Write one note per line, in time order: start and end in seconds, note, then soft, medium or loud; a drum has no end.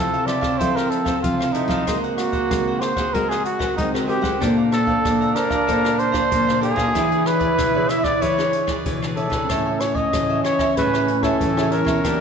0.00 0.57 C3 medium
0.00 0.24 F3 medium
0.00 0.38 C4 medium
0.00 1.83 C4 medium
0.00 0.38 E4 medium
0.00 0.11 A4 medium
0.00 0.28 A4 medium
0.00 0.38 A4 medium
0.00 0.11 C5 medium
0.00 0.10 F5 medium
0.13 0.26 A4 soft
0.13 0.27 C5 soft
0.13 0.27 F5 soft
0.13 closed hi-hat soft
0.26 0.42 E4 medium
0.26 0.42 A4 medium
0.26 0.41 C5 medium
0.26 0.60 D5 medium
0.26 0.40 F5 medium
0.26 cross-stick medium
0.26 closed hi-hat soft
0.41 0.58 A4 medium
0.41 0.58 C5 medium
0.41 0.57 F5 medium
0.41 kick medium
0.41 cross-stick medium
0.59 1.21 F3 medium
0.59 1.14 F3 loud
0.59 0.90 C4 medium
0.59 0.74 E4 medium
0.59 0.90 E4 medium
0.59 0.74 A4 medium
0.59 0.91 A4 medium
0.59 0.77 C5 medium
0.59 0.75 C5 medium
0.59 0.75 F5 medium
0.59 kick medium
0.59 closed hi-hat medium
0.76 0.89 A4 soft
0.76 0.92 A#4 medium
0.76 0.89 C5 soft
0.76 0.90 F5 medium
0.76 cross-stick medium
0.76 closed hi-hat soft
0.90 1.22 A4 medium
0.90 muted cavaquinho stroke soft
0.90 closed hi-hat medium
1.05 1.49 C4 medium
1.05 1.38 A4 medium
1.05 1.50 A4 medium
1.05 1.37 C5 medium
1.05 1.37 F5 medium
1.05 kick medium
1.05 cross-stick medium
1.05 closed hi-hat soft
1.22 1.84 C3 medium
1.22 1.64 F3 loud
1.22 1.54 F4 medium
1.22 kick medium
1.22 closed hi-hat medium
1.39 1.53 A4 soft
1.39 1.54 C5 soft
1.39 1.54 F5 soft
1.39 cross-stick medium
1.53 1.82 C4 medium
1.53 2.00 D#4 medium
1.53 1.69 E4 medium
1.53 1.82 E4 medium
1.53 1.69 A4 medium
1.53 1.82 A4 medium
1.53 1.69 C5 medium
1.53 1.68 F5 medium
1.53 closed hi-hat medium
1.68 1.83 F3 medium
1.68 1.86 A4 medium
1.68 1.85 C5 medium
1.68 1.85 F5 medium
1.68 kick medium
1.68 cross-stick medium
1.87 2.41 G#3 medium
1.87 2.48 G#3 medium
1.87 3.47 A#3 loud
1.87 2.28 C4 medium
1.87 2.02 F#4 medium
1.87 2.28 F#4 medium
1.87 2.02 G#4 medium
1.87 2.29 A#4 medium
1.87 2.02 C5 medium
1.87 2.02 F#5 medium
1.87 kick medium
1.87 cross-stick medium
1.87 closed hi-hat medium
2.04 2.17 G#4 soft
2.04 2.17 C5 soft
2.04 2.17 F#5 soft
2.04 closed hi-hat soft
2.17 2.82 F#4 medium
2.17 muted cavaquinho stroke soft
2.17 cross-stick medium
2.17 closed hi-hat medium
2.32 2.65 G#4 medium
2.32 2.65 C5 medium
2.32 2.64 F#5 medium
2.32 kick medium
2.32 closed hi-hat soft
2.50 3.11 D#3 medium
2.50 2.78 G#3 medium
2.50 2.91 C4 medium
2.50 2.92 F#4 medium
2.50 2.92 A#4 medium
2.50 kick medium
2.50 cross-stick medium
2.50 closed hi-hat medium
2.67 2.81 G#4 soft
2.67 2.81 C5 soft
2.67 2.82 F#5 soft
2.80 2.97 F#4 medium
2.80 2.97 G#4 medium
2.80 3.15 C5 medium
2.80 2.96 C5 medium
2.80 2.95 F#5 medium
2.80 cross-stick medium
2.80 closed hi-hat soft
2.96 3.13 G#4 medium
2.96 3.12 C5 medium
2.96 3.12 F#5 medium
2.96 kick medium
2.96 cross-stick medium
2.96 closed hi-hat soft
3.14 3.75 G#3 medium
3.14 3.69 G#3 loud
3.14 3.44 C4 medium
3.14 3.29 F#4 medium
3.14 3.44 F#4 medium
3.14 3.29 G#4 medium
3.14 3.31 A#4 medium
3.14 3.45 A#4 medium
3.14 3.30 C5 medium
3.14 3.30 F#5 medium
3.14 kick medium
3.14 closed hi-hat medium
3.30 3.44 G#4 medium
3.30 3.44 G#4 soft
3.30 3.44 C5 soft
3.30 3.44 F#5 medium
3.30 cross-stick medium
3.30 closed hi-hat soft
3.45 3.75 F#4 medium
3.45 muted cavaquinho stroke soft
3.45 closed hi-hat medium
3.59 3.88 C4 medium
3.59 3.88 F#4 medium
3.59 3.92 G#4 medium
3.59 3.88 A#4 medium
3.59 3.92 C5 medium
3.59 3.91 F#5 medium
3.59 kick medium
3.59 cross-stick medium
3.59 closed hi-hat soft
3.77 4.38 D#3 medium
3.77 4.19 G#3 loud
3.77 4.43 C4 medium
3.77 3.91 D#4 medium
3.77 kick medium
3.77 closed hi-hat medium
3.94 4.05 C4 medium
3.94 4.05 F#4 medium
3.94 4.06 G#4 soft
3.94 4.05 A#4 medium
3.94 4.07 C5 soft
3.94 4.07 F#5 medium
3.94 cross-stick medium
3.94 closed hi-hat soft
4.07 4.36 C4 medium
4.07 4.23 F#4 medium
4.07 4.36 F#4 medium
4.07 4.43 G4 loud
4.07 4.23 G#4 medium
4.07 4.36 A#4 medium
4.07 4.22 C5 medium
4.07 4.21 F#5 medium
4.07 closed hi-hat soft
4.22 4.37 G#3 medium
4.22 4.39 G#4 medium
4.22 4.39 C5 medium
4.22 4.39 F#5 medium
4.22 kick medium
4.22 cross-stick medium
4.40 4.96 A#2 loud
4.40 5.02 A#3 medium
4.40 6.90 D4 loud
4.40 4.71 D4 medium
4.40 4.56 A4 medium
4.40 4.72 A4 medium
4.40 4.72 C5 medium
4.40 4.56 D5 medium
4.40 4.56 F5 medium
4.40 4.56 A#5 medium
4.40 kick medium
4.40 cross-stick medium
4.40 closed hi-hat medium
4.57 4.71 D5 soft
4.57 4.70 F5 soft
4.57 4.71 A#5 soft
4.71 5.37 A4 loud
4.71 muted cavaquinho stroke soft
4.71 cross-stick medium
4.71 closed hi-hat soft
4.86 5.30 D4 medium
4.86 5.31 A4 medium
4.86 5.31 C5 medium
4.86 5.19 D5 medium
4.86 5.19 F5 medium
4.86 kick medium
5.05 5.32 A#2 medium
5.05 5.65 F3 medium
5.05 kick medium
5.05 cross-stick medium
5.05 closed hi-hat medium
5.21 5.35 D5 soft
5.21 5.35 F5 soft
5.21 5.36 A#5 medium
5.21 closed hi-hat soft
5.35 5.55 D4 medium
5.35 5.51 A4 medium
5.35 5.55 A4 medium
5.35 6.01 A#4 loud
5.35 5.55 C5 medium
5.35 5.50 D5 medium
5.35 5.49 F5 medium
5.35 5.48 A#5 medium
5.35 cross-stick medium
5.35 closed hi-hat soft
5.50 5.66 D5 medium
5.50 5.66 F5 medium
5.50 5.66 A#5 medium
5.50 kick medium
5.50 cross-stick medium
5.67 6.23 A#2 loud
5.67 6.29 A#3 medium
5.67 5.98 D4 medium
5.67 5.83 A4 medium
5.67 5.99 A4 medium
5.67 5.99 C5 medium
5.67 5.83 D5 medium
5.67 5.83 F5 medium
5.67 5.83 A#5 medium
5.67 kick medium
5.67 closed hi-hat medium
5.84 5.97 D5 soft
5.84 5.97 F5 soft
5.84 5.98 A#5 soft
5.84 cross-stick medium
5.84 closed hi-hat soft
5.98 6.62 C5 loud
5.98 muted cavaquinho stroke soft
5.98 closed hi-hat medium
6.12 6.58 D4 medium
6.12 6.58 C5 medium
6.12 6.45 D5 medium
6.12 6.45 F5 medium
6.12 6.45 A#5 medium
6.12 kick medium
6.12 cross-stick medium
6.12 closed hi-hat soft
6.31 6.73 A#2 loud
6.31 6.92 F3 medium
6.31 kick medium
6.31 closed hi-hat medium
6.47 6.60 D5 soft
6.47 6.60 F5 soft
6.47 6.61 A#5 medium
6.47 cross-stick medium
6.61 6.82 D4 medium
6.61 7.28 G#4 loud
6.61 6.77 A4 medium
6.61 6.82 A4 medium
6.61 6.82 C5 medium
6.61 6.76 D5 soft
6.61 6.75 F5 medium
6.61 6.75 A#5 medium
6.61 closed hi-hat medium
6.76 6.91 A#2 medium
6.76 6.93 D5 medium
6.76 6.93 F5 medium
6.76 6.92 A#5 medium
6.76 kick medium
6.76 cross-stick medium
6.88 6.96 F#4 medium
6.94 7.56 E3 medium
6.94 7.49 E3 medium
6.94 7.14 D4 medium
6.94 7.09 E4 medium
6.94 9.17 E4 loud
6.94 7.10 G#4 medium
6.94 7.14 G#4 medium
6.94 7.10 B4 medium
6.94 7.15 C#5 medium
6.94 7.10 D5 medium
6.94 kick medium
6.94 cross-stick medium
6.94 closed hi-hat medium
7.11 7.24 G#4 soft
7.11 7.24 B4 soft
7.11 7.24 D5 soft
7.11 closed hi-hat soft
7.25 7.69 D4 medium
7.25 7.69 G#4 medium
7.25 7.91 B4 loud
7.25 7.70 C#5 medium
7.25 muted cavaquinho stroke soft
7.25 cross-stick medium
7.25 closed hi-hat medium
7.39 7.73 G#4 medium
7.39 7.73 B4 medium
7.39 7.72 D5 medium
7.39 kick medium
7.39 closed hi-hat soft
7.58 8.19 B2 medium
7.58 7.86 E3 medium
7.58 kick medium
7.58 cross-stick medium
7.58 closed hi-hat medium
7.75 8.34 D4 medium
7.75 8.34 G#4 medium
7.75 7.88 G#4 soft
7.75 7.89 B4 soft
7.75 8.34 C#5 medium
7.75 7.89 D5 medium
7.89 8.04 E4 soft
7.89 8.03 G#4 medium
7.89 8.03 B4 medium
7.89 8.02 D5 medium
7.89 8.06 E5 loud
7.89 cross-stick medium
7.89 closed hi-hat medium
8.03 8.20 G#4 medium
8.03 8.20 B4 medium
8.03 8.20 D5 medium
8.03 8.23 D5 loud
8.03 kick medium
8.03 cross-stick medium
8.03 closed hi-hat soft
8.21 8.83 E3 medium
8.21 8.77 E3 loud
8.21 8.37 E4 medium
8.21 8.37 G#4 medium
8.21 8.37 B4 medium
8.21 8.86 C#5 loud
8.21 8.36 D5 medium
8.21 kick medium
8.21 closed hi-hat medium
8.38 8.81 D4 medium
8.38 8.51 G#4 soft
8.38 8.81 G#4 medium
8.38 8.51 B4 medium
8.38 8.82 C#5 medium
8.38 8.52 D5 medium
8.38 cross-stick medium
8.38 closed hi-hat soft
8.52 muted cavaquinho stroke soft
8.52 closed hi-hat medium
8.67 9.00 G#4 medium
8.67 9.00 B4 medium
8.67 8.99 D5 medium
8.67 kick medium
8.67 cross-stick medium
8.67 closed hi-hat soft
8.85 9.46 B2 medium
8.85 9.27 E3 loud
8.85 9.04 D4 medium
8.85 9.05 G#4 medium
8.85 9.05 C#5 medium
8.85 kick medium
8.85 closed hi-hat medium
9.02 9.15 G#4 soft
9.02 9.16 B4 soft
9.02 9.17 D5 soft
9.02 cross-stick medium
9.02 closed hi-hat soft
9.16 9.44 D4 medium
9.16 9.32 E4 medium
9.16 9.44 G#4 medium
9.16 9.32 G#4 soft
9.16 9.82 A4 medium
9.16 9.32 B4 medium
9.16 9.44 C#5 medium
9.16 9.31 D5 medium
9.16 closed hi-hat soft
9.30 9.45 E3 medium
9.30 9.48 G#4 medium
9.30 9.48 B4 medium
9.30 9.48 D5 medium
9.30 kick medium
9.30 cross-stick medium
9.43 9.51 C4 medium
9.49 10.04 A2 medium
9.49 10.10 A3 medium
9.49 12.06 C#4 loud
9.49 10.08 E4 medium
9.49 9.64 A4 medium
9.49 9.64 C#5 medium
9.49 10.08 C#5 medium
9.49 9.65 E5 medium
9.49 9.64 G#5 medium
9.49 kick medium
9.49 cross-stick medium
9.49 closed hi-hat medium
9.66 9.79 C#5 soft
9.66 9.80 E5 soft
9.66 9.80 G#5 soft
9.80 9.97 C#5 medium
9.80 muted cavaquinho stroke soft
9.80 cross-stick medium
9.80 closed hi-hat soft
9.95 10.27 C#5 medium
9.95 10.43 D#5 medium
9.95 10.27 G#5 medium
9.95 kick medium
10.13 10.41 A2 medium
10.13 10.74 E3 medium
10.13 10.54 E4 medium
10.13 10.54 G#4 medium
10.13 10.55 C#5 medium
10.13 kick medium
10.13 cross-stick medium
10.13 closed hi-hat medium
10.29 10.43 C#5 soft
10.29 10.43 E5 soft
10.29 10.44 G#5 soft
10.29 closed hi-hat soft
10.44 10.59 A4 soft
10.44 10.74 C#5 medium
10.44 10.59 C#5 medium
10.44 10.58 E5 medium
10.44 10.58 G#5 medium
10.44 cross-stick medium
10.44 closed hi-hat soft
10.59 10.75 C#5 medium
10.59 10.75 E5 medium
10.59 10.75 G#5 medium
10.59 kick medium
10.59 cross-stick medium
10.77 11.31 A2 loud
10.77 11.37 A3 medium
10.77 11.19 E4 medium
10.77 11.20 G#4 medium
10.77 10.92 A4 medium
10.77 11.25 B4 medium
10.77 11.20 C#5 medium
10.77 10.92 C#5 medium
10.77 10.92 E5 medium
10.77 10.92 G#5 medium
10.77 kick medium
10.77 closed hi-hat medium
10.94 11.08 C#5 soft
10.94 11.08 E5 soft
10.94 11.08 G#5 medium
10.94 cross-stick medium
10.94 closed hi-hat soft
11.08 muted cavaquinho stroke soft
11.08 closed hi-hat soft
11.23 11.50 E4 medium
11.23 11.51 G#4 medium
11.23 11.73 A4 loud
11.23 11.51 C#5 medium
11.23 11.55 C#5 medium
11.23 11.55 E5 medium
11.23 11.54 G#5 medium
11.23 kick medium
11.23 cross-stick medium
11.23 closed hi-hat soft
11.40 11.81 A2 loud
11.40 12.01 E3 medium
11.40 kick medium
11.40 closed hi-hat medium
11.57 11.68 E4 medium
11.57 11.68 G#4 medium
11.57 11.68 C#5 medium
11.57 11.71 C#5 soft
11.57 11.72 E5 soft
11.57 11.71 G#5 medium
11.57 cross-stick medium
11.71 11.98 E4 medium
11.71 11.98 G#4 medium
11.71 11.87 A4 medium
11.71 12.21 A#4 loud
11.71 11.99 C#5 medium
11.71 11.86 C#5 medium
11.71 11.86 E5 medium
11.71 11.85 G#5 medium
11.71 closed hi-hat soft
11.85 12.00 B2 medium
11.85 12.02 C#5 medium
11.85 12.02 E5 medium
11.85 12.02 G#5 medium
11.85 kick medium
11.85 cross-stick medium
12.04 12.21 E2 medium
12.04 12.21 E3 medium
12.04 12.21 A#3 medium
12.04 12.21 D4 loud
12.04 12.21 D4 medium
12.04 12.18 G4 medium
12.04 12.21 G4 medium
12.04 12.19 A#4 medium
12.04 12.19 D5 medium
12.04 12.19 E5 medium
12.04 kick medium
12.04 cross-stick medium
12.04 closed hi-hat medium